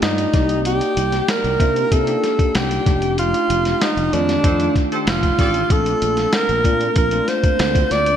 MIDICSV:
0, 0, Header, 1, 6, 480
1, 0, Start_track
1, 0, Key_signature, -2, "major"
1, 0, Tempo, 631579
1, 496, Time_signature, 4, 2, 24, 8
1, 6205, End_track
2, 0, Start_track
2, 0, Title_t, "Horn section"
2, 0, Program_c, 0, 61
2, 3374, Note_on_c, 0, 69, 64
2, 3374, Note_on_c, 0, 72, 78
2, 3375, Note_on_c, 0, 67, 69
2, 3476, Note_off_c, 0, 69, 0
2, 3476, Note_off_c, 0, 72, 0
2, 3477, Note_off_c, 0, 67, 0
2, 3737, Note_on_c, 0, 69, 82
2, 3740, Note_on_c, 0, 67, 77
2, 3740, Note_on_c, 0, 72, 85
2, 3838, Note_off_c, 0, 69, 0
2, 3840, Note_off_c, 0, 67, 0
2, 3840, Note_off_c, 0, 72, 0
2, 4095, Note_on_c, 0, 69, 74
2, 4098, Note_on_c, 0, 67, 81
2, 4098, Note_on_c, 0, 74, 91
2, 4248, Note_off_c, 0, 69, 0
2, 4250, Note_off_c, 0, 67, 0
2, 4250, Note_off_c, 0, 74, 0
2, 6205, End_track
3, 0, Start_track
3, 0, Title_t, "Alto saxophone"
3, 0, Program_c, 1, 65
3, 19, Note_on_c, 1, 63, 77
3, 467, Note_off_c, 1, 63, 0
3, 505, Note_on_c, 1, 67, 88
3, 991, Note_on_c, 1, 70, 92
3, 1003, Note_off_c, 1, 67, 0
3, 1469, Note_on_c, 1, 69, 87
3, 1480, Note_off_c, 1, 70, 0
3, 1942, Note_on_c, 1, 67, 74
3, 1953, Note_off_c, 1, 69, 0
3, 2419, Note_off_c, 1, 67, 0
3, 2426, Note_on_c, 1, 65, 95
3, 2902, Note_on_c, 1, 63, 82
3, 2913, Note_off_c, 1, 65, 0
3, 3146, Note_on_c, 1, 62, 89
3, 3157, Note_off_c, 1, 63, 0
3, 3655, Note_off_c, 1, 62, 0
3, 3867, Note_on_c, 1, 65, 75
3, 4346, Note_on_c, 1, 69, 86
3, 4358, Note_off_c, 1, 65, 0
3, 4824, Note_on_c, 1, 70, 94
3, 4835, Note_off_c, 1, 69, 0
3, 5299, Note_off_c, 1, 70, 0
3, 5302, Note_on_c, 1, 70, 84
3, 5536, Note_on_c, 1, 72, 93
3, 5548, Note_off_c, 1, 70, 0
3, 6019, Note_on_c, 1, 74, 108
3, 6031, Note_off_c, 1, 72, 0
3, 6205, Note_off_c, 1, 74, 0
3, 6205, End_track
4, 0, Start_track
4, 0, Title_t, "Tine electric piano"
4, 0, Program_c, 2, 4
4, 0, Control_c, 2, 64, 127
4, 0, Note_on_c, 2, 57, 59
4, 0, Note_on_c, 2, 62, 63
4, 0, Note_on_c, 2, 65, 62
4, 0, Note_on_c, 2, 67, 73
4, 0, Note_on_c, 2, 74, 59
4, 245, Note_off_c, 2, 74, 0
4, 249, Note_off_c, 2, 67, 0
4, 251, Note_on_c, 2, 58, 69
4, 253, Note_off_c, 2, 57, 0
4, 254, Note_on_c, 2, 74, 65
4, 257, Note_off_c, 2, 65, 0
4, 257, Note_on_c, 2, 63, 63
4, 258, Note_on_c, 2, 67, 73
4, 267, Control_c, 2, 64, 0
4, 274, Note_off_c, 2, 62, 0
4, 400, Control_c, 2, 64, 127
4, 1021, Note_off_c, 2, 58, 0
4, 1023, Note_off_c, 2, 74, 0
4, 1024, Note_off_c, 2, 63, 0
4, 1025, Note_off_c, 2, 67, 0
4, 1211, Note_on_c, 2, 58, 65
4, 1214, Note_on_c, 2, 62, 63
4, 1216, Note_on_c, 2, 63, 58
4, 1221, Note_on_c, 2, 65, 80
4, 1477, Note_off_c, 2, 58, 0
4, 1478, Note_off_c, 2, 62, 0
4, 1479, Note_off_c, 2, 63, 0
4, 1481, Note_off_c, 2, 65, 0
4, 1572, Note_on_c, 2, 58, 66
4, 1574, Note_on_c, 2, 62, 59
4, 1579, Note_on_c, 2, 63, 55
4, 1581, Note_on_c, 2, 67, 64
4, 2165, Note_off_c, 2, 62, 0
4, 2168, Note_off_c, 2, 63, 0
4, 2169, Note_off_c, 2, 67, 0
4, 2169, Note_on_c, 2, 57, 69
4, 2174, Note_off_c, 2, 58, 0
4, 2174, Note_on_c, 2, 62, 69
4, 2177, Note_on_c, 2, 63, 61
4, 2178, Note_on_c, 2, 67, 84
4, 2186, Control_c, 2, 64, 0
4, 2337, Control_c, 2, 64, 127
4, 2940, Note_off_c, 2, 57, 0
4, 2942, Note_off_c, 2, 62, 0
4, 2944, Note_off_c, 2, 63, 0
4, 2945, Note_off_c, 2, 67, 0
4, 3131, Note_on_c, 2, 57, 66
4, 3134, Note_on_c, 2, 62, 59
4, 3138, Note_on_c, 2, 51, 59
4, 3142, Note_on_c, 2, 65, 70
4, 3396, Note_off_c, 2, 57, 0
4, 3398, Note_off_c, 2, 62, 0
4, 3400, Note_off_c, 2, 51, 0
4, 3402, Note_off_c, 2, 65, 0
4, 3487, Note_on_c, 2, 57, 61
4, 3489, Note_on_c, 2, 62, 55
4, 3492, Note_on_c, 2, 63, 61
4, 3494, Note_on_c, 2, 65, 65
4, 4105, Note_off_c, 2, 57, 0
4, 4106, Note_off_c, 2, 62, 0
4, 4107, Note_off_c, 2, 63, 0
4, 4108, Note_off_c, 2, 65, 0
4, 4328, Note_on_c, 2, 57, 61
4, 4333, Note_on_c, 2, 60, 55
4, 4335, Note_on_c, 2, 62, 60
4, 4338, Note_on_c, 2, 65, 67
4, 4345, Control_c, 2, 64, 0
4, 4476, Control_c, 2, 64, 127
4, 4858, Note_off_c, 2, 57, 0
4, 4860, Note_off_c, 2, 60, 0
4, 4861, Note_off_c, 2, 62, 0
4, 4862, Note_off_c, 2, 65, 0
4, 5048, Note_on_c, 2, 58, 64
4, 5051, Note_on_c, 2, 60, 61
4, 5054, Note_on_c, 2, 62, 59
4, 5056, Note_on_c, 2, 65, 74
4, 5314, Note_off_c, 2, 58, 0
4, 5316, Note_off_c, 2, 60, 0
4, 5317, Note_off_c, 2, 62, 0
4, 5318, Note_off_c, 2, 65, 0
4, 5410, Note_on_c, 2, 57, 64
4, 5414, Note_on_c, 2, 60, 59
4, 5416, Note_on_c, 2, 62, 56
4, 5419, Note_on_c, 2, 65, 71
4, 6026, Note_off_c, 2, 57, 0
4, 6028, Note_off_c, 2, 60, 0
4, 6029, Note_off_c, 2, 62, 0
4, 6030, Note_off_c, 2, 65, 0
4, 6205, End_track
5, 0, Start_track
5, 0, Title_t, "Fretless electric bass"
5, 0, Program_c, 3, 35
5, 16, Note_on_c, 3, 43, 86
5, 188, Note_off_c, 3, 43, 0
5, 258, Note_on_c, 3, 36, 89
5, 602, Note_off_c, 3, 36, 0
5, 735, Note_on_c, 3, 36, 89
5, 907, Note_off_c, 3, 36, 0
5, 1093, Note_on_c, 3, 36, 81
5, 1180, Note_off_c, 3, 36, 0
5, 1214, Note_on_c, 3, 48, 97
5, 1387, Note_off_c, 3, 48, 0
5, 1457, Note_on_c, 3, 48, 77
5, 1629, Note_off_c, 3, 48, 0
5, 1937, Note_on_c, 3, 36, 81
5, 2109, Note_off_c, 3, 36, 0
5, 2178, Note_on_c, 3, 29, 80
5, 2522, Note_off_c, 3, 29, 0
5, 2657, Note_on_c, 3, 29, 86
5, 2829, Note_off_c, 3, 29, 0
5, 3015, Note_on_c, 3, 29, 81
5, 3101, Note_off_c, 3, 29, 0
5, 3138, Note_on_c, 3, 41, 85
5, 3309, Note_off_c, 3, 41, 0
5, 3375, Note_on_c, 3, 41, 84
5, 3547, Note_off_c, 3, 41, 0
5, 3855, Note_on_c, 3, 29, 86
5, 4027, Note_off_c, 3, 29, 0
5, 4094, Note_on_c, 3, 33, 81
5, 4267, Note_off_c, 3, 33, 0
5, 4333, Note_on_c, 3, 34, 88
5, 4506, Note_off_c, 3, 34, 0
5, 4574, Note_on_c, 3, 34, 88
5, 4747, Note_off_c, 3, 34, 0
5, 4932, Note_on_c, 3, 34, 77
5, 5019, Note_off_c, 3, 34, 0
5, 5050, Note_on_c, 3, 46, 92
5, 5224, Note_off_c, 3, 46, 0
5, 5291, Note_on_c, 3, 34, 80
5, 5465, Note_off_c, 3, 34, 0
5, 5771, Note_on_c, 3, 38, 94
5, 5944, Note_off_c, 3, 38, 0
5, 6010, Note_on_c, 3, 38, 77
5, 6205, Note_off_c, 3, 38, 0
5, 6205, End_track
6, 0, Start_track
6, 0, Title_t, "Drums"
6, 16, Note_on_c, 9, 42, 72
6, 20, Note_on_c, 9, 38, 106
6, 92, Note_off_c, 9, 42, 0
6, 96, Note_off_c, 9, 38, 0
6, 138, Note_on_c, 9, 42, 51
6, 214, Note_off_c, 9, 42, 0
6, 254, Note_on_c, 9, 42, 65
6, 256, Note_on_c, 9, 36, 99
6, 259, Note_on_c, 9, 38, 33
6, 330, Note_off_c, 9, 42, 0
6, 332, Note_off_c, 9, 36, 0
6, 335, Note_off_c, 9, 38, 0
6, 374, Note_on_c, 9, 42, 47
6, 450, Note_off_c, 9, 42, 0
6, 496, Note_on_c, 9, 42, 92
6, 572, Note_off_c, 9, 42, 0
6, 617, Note_on_c, 9, 42, 51
6, 693, Note_off_c, 9, 42, 0
6, 737, Note_on_c, 9, 42, 72
6, 813, Note_off_c, 9, 42, 0
6, 854, Note_on_c, 9, 42, 44
6, 859, Note_on_c, 9, 38, 31
6, 930, Note_off_c, 9, 42, 0
6, 935, Note_off_c, 9, 38, 0
6, 976, Note_on_c, 9, 42, 84
6, 977, Note_on_c, 9, 38, 102
6, 1052, Note_off_c, 9, 42, 0
6, 1053, Note_off_c, 9, 38, 0
6, 1098, Note_on_c, 9, 42, 31
6, 1174, Note_off_c, 9, 42, 0
6, 1215, Note_on_c, 9, 36, 89
6, 1218, Note_on_c, 9, 42, 64
6, 1291, Note_off_c, 9, 36, 0
6, 1294, Note_off_c, 9, 42, 0
6, 1340, Note_on_c, 9, 42, 42
6, 1416, Note_off_c, 9, 42, 0
6, 1457, Note_on_c, 9, 36, 76
6, 1457, Note_on_c, 9, 42, 84
6, 1533, Note_off_c, 9, 36, 0
6, 1533, Note_off_c, 9, 42, 0
6, 1575, Note_on_c, 9, 42, 45
6, 1651, Note_off_c, 9, 42, 0
6, 1699, Note_on_c, 9, 42, 52
6, 1701, Note_on_c, 9, 38, 33
6, 1775, Note_off_c, 9, 42, 0
6, 1777, Note_off_c, 9, 38, 0
6, 1817, Note_on_c, 9, 36, 85
6, 1820, Note_on_c, 9, 42, 44
6, 1893, Note_off_c, 9, 36, 0
6, 1896, Note_off_c, 9, 42, 0
6, 1936, Note_on_c, 9, 42, 76
6, 1940, Note_on_c, 9, 38, 100
6, 2012, Note_off_c, 9, 42, 0
6, 2016, Note_off_c, 9, 38, 0
6, 2059, Note_on_c, 9, 42, 51
6, 2135, Note_off_c, 9, 42, 0
6, 2176, Note_on_c, 9, 36, 105
6, 2177, Note_on_c, 9, 42, 67
6, 2181, Note_on_c, 9, 38, 30
6, 2252, Note_off_c, 9, 36, 0
6, 2253, Note_off_c, 9, 42, 0
6, 2257, Note_off_c, 9, 38, 0
6, 2294, Note_on_c, 9, 42, 48
6, 2370, Note_off_c, 9, 42, 0
6, 2417, Note_on_c, 9, 42, 89
6, 2493, Note_off_c, 9, 42, 0
6, 2540, Note_on_c, 9, 42, 50
6, 2616, Note_off_c, 9, 42, 0
6, 2660, Note_on_c, 9, 42, 78
6, 2736, Note_off_c, 9, 42, 0
6, 2776, Note_on_c, 9, 42, 45
6, 2781, Note_on_c, 9, 38, 29
6, 2852, Note_off_c, 9, 42, 0
6, 2857, Note_off_c, 9, 38, 0
6, 2899, Note_on_c, 9, 42, 75
6, 2900, Note_on_c, 9, 38, 99
6, 2975, Note_off_c, 9, 42, 0
6, 2976, Note_off_c, 9, 38, 0
6, 3021, Note_on_c, 9, 42, 34
6, 3097, Note_off_c, 9, 42, 0
6, 3140, Note_on_c, 9, 42, 60
6, 3216, Note_off_c, 9, 42, 0
6, 3260, Note_on_c, 9, 38, 35
6, 3261, Note_on_c, 9, 42, 43
6, 3336, Note_off_c, 9, 38, 0
6, 3337, Note_off_c, 9, 42, 0
6, 3375, Note_on_c, 9, 36, 80
6, 3375, Note_on_c, 9, 42, 89
6, 3451, Note_off_c, 9, 36, 0
6, 3451, Note_off_c, 9, 42, 0
6, 3494, Note_on_c, 9, 42, 45
6, 3570, Note_off_c, 9, 42, 0
6, 3614, Note_on_c, 9, 36, 88
6, 3617, Note_on_c, 9, 42, 51
6, 3619, Note_on_c, 9, 38, 30
6, 3690, Note_off_c, 9, 36, 0
6, 3693, Note_off_c, 9, 42, 0
6, 3695, Note_off_c, 9, 38, 0
6, 3739, Note_on_c, 9, 42, 43
6, 3815, Note_off_c, 9, 42, 0
6, 3853, Note_on_c, 9, 42, 75
6, 3857, Note_on_c, 9, 38, 109
6, 3929, Note_off_c, 9, 42, 0
6, 3933, Note_off_c, 9, 38, 0
6, 3973, Note_on_c, 9, 36, 86
6, 3976, Note_on_c, 9, 42, 46
6, 4049, Note_off_c, 9, 36, 0
6, 4052, Note_off_c, 9, 42, 0
6, 4094, Note_on_c, 9, 36, 89
6, 4094, Note_on_c, 9, 42, 69
6, 4098, Note_on_c, 9, 38, 33
6, 4170, Note_off_c, 9, 36, 0
6, 4170, Note_off_c, 9, 42, 0
6, 4174, Note_off_c, 9, 38, 0
6, 4212, Note_on_c, 9, 42, 46
6, 4288, Note_off_c, 9, 42, 0
6, 4333, Note_on_c, 9, 36, 105
6, 4334, Note_on_c, 9, 42, 93
6, 4409, Note_off_c, 9, 36, 0
6, 4410, Note_off_c, 9, 42, 0
6, 4454, Note_on_c, 9, 42, 51
6, 4530, Note_off_c, 9, 42, 0
6, 4574, Note_on_c, 9, 42, 73
6, 4650, Note_off_c, 9, 42, 0
6, 4689, Note_on_c, 9, 42, 45
6, 4694, Note_on_c, 9, 38, 31
6, 4765, Note_off_c, 9, 42, 0
6, 4770, Note_off_c, 9, 38, 0
6, 4808, Note_on_c, 9, 42, 84
6, 4809, Note_on_c, 9, 38, 99
6, 4884, Note_off_c, 9, 42, 0
6, 4885, Note_off_c, 9, 38, 0
6, 4933, Note_on_c, 9, 42, 33
6, 5009, Note_off_c, 9, 42, 0
6, 5050, Note_on_c, 9, 36, 81
6, 5053, Note_on_c, 9, 42, 64
6, 5126, Note_off_c, 9, 36, 0
6, 5129, Note_off_c, 9, 42, 0
6, 5173, Note_on_c, 9, 42, 42
6, 5249, Note_off_c, 9, 42, 0
6, 5287, Note_on_c, 9, 42, 87
6, 5291, Note_on_c, 9, 36, 83
6, 5363, Note_off_c, 9, 42, 0
6, 5367, Note_off_c, 9, 36, 0
6, 5406, Note_on_c, 9, 42, 45
6, 5482, Note_off_c, 9, 42, 0
6, 5531, Note_on_c, 9, 42, 58
6, 5533, Note_on_c, 9, 38, 30
6, 5607, Note_off_c, 9, 42, 0
6, 5609, Note_off_c, 9, 38, 0
6, 5651, Note_on_c, 9, 36, 85
6, 5651, Note_on_c, 9, 42, 47
6, 5727, Note_off_c, 9, 36, 0
6, 5727, Note_off_c, 9, 42, 0
6, 5771, Note_on_c, 9, 42, 76
6, 5774, Note_on_c, 9, 38, 103
6, 5847, Note_off_c, 9, 42, 0
6, 5850, Note_off_c, 9, 38, 0
6, 5890, Note_on_c, 9, 36, 85
6, 5894, Note_on_c, 9, 42, 52
6, 5966, Note_off_c, 9, 36, 0
6, 5970, Note_off_c, 9, 42, 0
6, 6012, Note_on_c, 9, 42, 66
6, 6016, Note_on_c, 9, 38, 33
6, 6088, Note_off_c, 9, 42, 0
6, 6092, Note_off_c, 9, 38, 0
6, 6128, Note_on_c, 9, 42, 50
6, 6204, Note_off_c, 9, 42, 0
6, 6205, End_track
0, 0, End_of_file